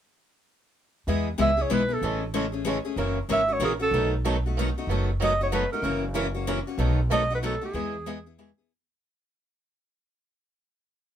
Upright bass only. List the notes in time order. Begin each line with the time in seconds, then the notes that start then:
1.07 E2
1.38 C#2
1.70 B1
2.01 A1
2.96 F#1
3.29 G#1
3.60 A#1
3.91 B1
4.87 F#1
5.82 F#1
6.78 B1
7.74 E2